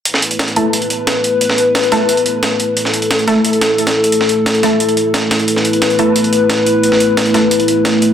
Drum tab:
HH |x-xxxxx-xxx-x-x-|x-x-xxx-xxx-x-x-|x-xxxxx-xxx-xx-x|x-x-xxx-xxx-x-xx|
SD |-o--o-------o---|-o--o-o-----o---|-o--o-o---o--o--|-o--o-o-----o-o-|

HH |x-xxxxx-xxx-x-x-|x-x-xxx-xxx-x-x-|
SD |-o--o-------o---|-o--o-o-----o---|